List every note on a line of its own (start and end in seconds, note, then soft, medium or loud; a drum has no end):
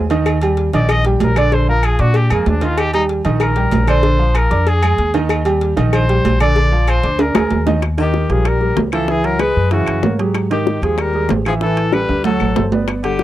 0.00 0.68 D#2 medium
0.10 0.36 D#3 loud
0.10 0.36 D#4 medium
0.10 0.36 D#5 medium
0.10 cowbell medium
0.10 low agogo medium
0.26 cowbell medium
0.26 low agogo loud
0.26 claves medium
0.41 0.68 G3 medium
0.41 0.68 G4 medium
0.41 0.68 G5 medium
0.41 cowbell medium
0.41 low agogo medium
0.57 cowbell medium
0.73 1.17 A#1 loud
0.73 0.99 D#3 medium
0.73 0.99 D#4 medium
0.73 0.92 D5 loud
0.73 1.00 D#5 medium
0.73 cowbell medium
0.73 low agogo medium
0.89 1.06 D#5 loud
0.89 cowbell loud
0.89 low agogo loud
0.89 claves medium
1.05 1.31 G3 medium
1.05 1.31 G4 medium
1.05 1.23 G4 medium
1.05 1.31 G5 medium
1.05 cowbell medium
1.20 1.94 A#1 medium
1.20 1.39 A#4 loud
1.20 cowbell medium
1.20 low timbale medium
1.20 low agogo medium
1.36 1.49 D3 loud
1.36 1.49 D4 medium
1.36 1.50 D5 loud
1.36 1.55 D5 loud
1.36 cowbell medium
1.36 low agogo loud
1.36 claves medium
1.52 1.65 D3 medium
1.52 1.66 D4 medium
1.52 1.68 C5 medium
1.52 1.66 D5 medium
1.52 cowbell medium
1.68 1.94 F3 medium
1.68 1.94 F4 medium
1.68 1.87 A#4 loud
1.68 1.94 F5 medium
1.83 2.02 G#4 medium
1.83 cowbell medium
1.83 low agogo medium
1.83 claves medium
1.99 2.29 A#2 loud
1.99 2.25 D4 medium
1.99 2.18 F#4 medium
1.99 2.25 D5 medium
1.99 2.25 D6 medium
1.99 cowbell medium
2.14 2.31 G4 loud
2.14 cowbell loud
2.14 low agogo medium
2.30 2.46 F2 medium
2.30 2.57 G#3 medium
2.30 2.50 A#3 medium
2.30 2.57 G#4 medium
2.30 2.57 G#5 medium
2.30 low agogo loud
2.30 claves medium
2.46 3.20 D#2 medium
2.46 2.63 D4 medium
2.46 cowbell medium
2.46 low timbale medium
2.61 2.88 D#3 medium
2.61 2.88 D#4 medium
2.61 2.80 F4 medium
2.61 2.88 D#5 medium
2.61 cowbell medium
2.61 low agogo medium
2.77 2.93 G4 loud
2.77 cowbell loud
2.77 low agogo loud
2.77 claves medium
2.93 3.20 G3 medium
2.93 3.03 D#4 loud
2.93 3.20 G4 medium
2.93 3.20 G5 medium
2.93 cowbell medium
2.93 low agogo medium
3.09 cowbell medium
3.25 3.69 A#1 loud
3.25 3.51 D#3 medium
3.25 3.51 D#4 medium
3.25 3.51 D#5 medium
3.25 cowbell medium
3.25 low agogo medium
3.40 3.85 A#4 medium
3.40 cowbell loud
3.40 low agogo loud
3.40 claves medium
3.56 3.82 G3 medium
3.56 3.82 G4 medium
3.56 3.83 G5 medium
3.56 cowbell medium
3.71 4.45 A#1 medium
3.71 cowbell medium
3.71 low timbale medium
3.71 low agogo medium
3.87 4.01 D3 loud
3.87 4.01 D4 medium
3.87 4.38 C5 loud
3.87 4.01 D5 medium
3.87 cowbell medium
3.87 low agogo loud
3.87 claves medium
4.03 4.16 D3 medium
4.03 4.16 D4 medium
4.03 4.17 D5 medium
4.03 cowbell loud
4.19 4.45 F3 medium
4.19 4.45 F4 medium
4.19 4.45 F5 medium
4.35 4.70 A#4 loud
4.35 cowbell medium
4.35 low agogo loud
4.35 claves medium
4.50 4.95 F2 loud
4.50 4.77 D4 medium
4.50 4.77 D5 medium
4.50 4.77 D6 medium
4.50 cowbell medium
4.67 5.15 G#4 loud
4.67 cowbell loud
4.67 low agogo medium
4.83 5.09 G#3 medium
4.83 5.09 G#4 medium
4.83 5.09 G#5 medium
4.83 low agogo loud
4.83 claves medium
4.98 5.72 D#2 medium
4.98 cowbell medium
5.14 5.40 D#3 loud
5.14 5.40 D#4 loud
5.14 5.40 D#5 medium
5.14 cowbell medium
5.14 low agogo medium
5.29 cowbell loud
5.29 low agogo loud
5.29 claves medium
5.45 5.71 G3 medium
5.45 5.72 G4 medium
5.45 5.72 G5 medium
5.45 cowbell medium
5.45 low agogo medium
5.61 cowbell medium
5.76 6.21 A#1 loud
5.76 6.03 D#3 medium
5.76 6.03 D#4 medium
5.76 6.03 D#5 medium
5.76 cowbell medium
5.76 low agogo medium
5.93 6.37 C5 medium
5.93 cowbell loud
5.93 low agogo loud
5.93 claves medium
6.09 6.35 G3 medium
6.09 6.35 G4 medium
6.09 6.35 G5 medium
6.09 cowbell medium
6.24 6.98 A#1 medium
6.24 cowbell medium
6.24 low timbale medium
6.24 low agogo medium
6.40 6.54 D3 loud
6.40 6.54 D4 medium
6.40 6.91 D5 loud
6.40 6.54 D5 loud
6.40 cowbell medium
6.40 low agogo loud
6.40 claves medium
6.56 6.69 D3 medium
6.56 6.69 D4 medium
6.56 6.70 D5 medium
6.56 cowbell loud
6.71 6.98 F3 medium
6.71 6.98 F4 medium
6.71 6.98 F5 medium
6.88 7.23 C5 loud
6.88 cowbell medium
6.88 low agogo loud
6.88 claves medium
7.03 7.33 D2 medium
7.03 7.29 D4 medium
7.03 7.30 D5 medium
7.03 7.30 D6 medium
7.03 cowbell medium
7.19 7.67 A#4 medium
7.19 cowbell loud
7.19 high timbale medium
7.19 low agogo medium
7.35 7.50 D2 medium
7.35 7.61 G#3 medium
7.35 7.61 G#4 medium
7.35 7.61 G#5 medium
7.35 high bongo loud
7.35 low timbale medium
7.35 low agogo loud
7.35 claves medium
7.50 8.24 D#2 medium
7.50 cowbell medium
7.50 low timbale medium
7.66 7.79 D#3 medium
7.66 7.80 D#4 medium
7.66 7.80 D#5 medium
7.66 cowbell medium
7.66 low bongo medium
7.66 low timbale medium
7.66 low agogo medium
7.82 high bongo medium
7.82 high timbale medium
7.82 claves medium
7.98 8.24 D#3 medium
7.98 8.32 D#3 medium
7.98 8.24 D#4 medium
7.98 8.34 G4 medium
7.98 8.24 D#5 medium
7.98 high bongo soft
7.98 high timbale medium
8.14 high bongo medium
8.14 low timbale medium
8.29 8.74 A#1 medium
8.29 8.48 F3 medium
8.29 8.56 G3 medium
8.29 8.56 G4 medium
8.29 8.49 G#4 medium
8.29 8.56 A#4 medium
8.29 high bongo soft
8.29 high timbale medium
8.45 8.78 G3 medium
8.45 8.78 A#4 medium
8.45 high bongo medium
8.45 high timbale medium
8.45 claves medium
8.61 8.87 G3 medium
8.61 8.87 G4 medium
8.61 8.87 A#4 medium
8.61 high bongo soft
8.77 9.51 C#2 medium
8.77 high bongo medium
8.77 low bongo medium
8.77 high timbale medium
8.77 low timbale medium
8.92 9.06 E3 medium
8.92 9.10 F3 medium
8.92 9.06 E4 medium
8.92 9.12 A4 medium
8.92 9.06 E5 medium
8.92 high timbale medium
8.92 claves medium
9.08 9.34 E3 medium
9.08 9.26 E3 medium
9.08 9.34 E4 medium
9.08 9.27 G#4 medium
9.08 9.35 E5 medium
9.08 high bongo medium
9.24 9.41 F#3 medium
9.24 9.42 A#4 medium
9.24 high bongo soft
9.24 high timbale medium
9.39 9.72 G#3 medium
9.39 9.66 G#3 medium
9.39 9.66 G#4 medium
9.39 9.72 B4 loud
9.39 9.66 B4 medium
9.39 high bongo medium
9.39 high timbale medium
9.39 low timbale soft
9.39 claves medium
9.56 9.86 F#2 medium
9.71 10.16 C#3 medium
9.71 9.98 E3 medium
9.71 9.98 E4 medium
9.71 10.16 F#4 medium
9.71 9.98 E5 medium
9.71 high bongo medium
9.71 high timbale medium
9.87 10.02 F#2 medium
9.87 high bongo soft
9.87 high timbale medium
9.87 claves medium
10.03 10.77 G#2 medium
10.03 10.16 A#3 medium
10.03 10.17 A#4 medium
10.03 10.17 C#5 medium
10.03 high bongo medium
10.03 low bongo medium
10.03 low timbale medium
10.19 10.45 F#3 medium
10.19 10.45 G4 medium
10.19 10.45 G#4 medium
10.19 high bongo soft
10.19 high timbale medium
10.34 high bongo medium
10.34 high timbale medium
10.34 claves medium
10.51 10.77 D#3 medium
10.51 10.81 D#3 medium
10.51 10.77 D#4 medium
10.51 10.81 G4 medium
10.51 10.77 D#5 medium
10.51 high bongo soft
10.51 high timbale medium
10.67 high bongo medium
10.67 low timbale soft
10.82 11.26 D#2 medium
10.82 11.01 F3 medium
10.82 11.08 G#3 medium
10.82 11.09 G4 medium
10.82 11.09 G#4 medium
10.82 11.02 G#4 medium
10.82 high bongo soft
10.82 high timbale medium
10.98 11.31 G3 medium
10.98 11.31 A#4 medium
10.98 high bongo medium
10.98 high timbale medium
10.98 claves medium
11.14 11.40 G#3 medium
11.14 11.40 G4 medium
11.14 11.40 G#4 medium
11.14 high bongo soft
11.29 12.03 A1 medium
11.29 high bongo medium
11.29 low bongo medium
11.29 high timbale medium
11.29 low timbale medium
11.45 11.59 E3 medium
11.45 11.54 F3 medium
11.45 11.59 E4 medium
11.45 11.54 G#4 medium
11.45 11.59 E5 medium
11.45 high timbale medium
11.45 claves medium
11.61 11.87 E3 medium
11.61 11.97 E3 medium
11.61 11.87 E4 medium
11.61 11.95 A4 loud
11.61 11.88 E5 medium
11.61 high bongo medium
11.77 high bongo soft
11.77 high timbale medium
11.93 12.19 G3 medium
11.93 12.26 G3 medium
11.93 12.19 G4 medium
11.93 12.20 A4 medium
11.93 12.24 B4 loud
11.93 high bongo medium
11.93 high timbale medium
11.93 claves medium
12.09 12.39 D2 medium
12.09 high timbale medium
12.24 12.50 F#3 medium
12.24 12.70 F#3 medium
12.24 12.50 F#4 medium
12.24 12.69 A4 medium
12.24 12.51 F#5 medium
12.24 high bongo medium
12.24 low timbale medium
12.40 12.55 A1 medium
12.40 high bongo soft
12.40 low timbale medium
12.40 claves medium
12.56 13.23 G1 medium
12.56 12.69 A3 medium
12.56 12.69 A4 medium
12.56 12.69 C5 medium
12.56 high bongo medium
12.56 low bongo medium
12.56 low timbale medium
12.72 12.98 B3 medium
12.72 12.99 B4 medium
12.72 12.99 D5 medium
12.72 high bongo soft
12.72 low timbale medium
12.88 high bongo medium
12.88 high timbale medium
12.88 claves medium
13.03 13.23 D3 medium
13.03 13.23 G3 medium
13.03 13.23 G4 medium
13.03 13.23 F#5 medium
13.03 high bongo soft
13.03 high timbale medium
13.19 high bongo medium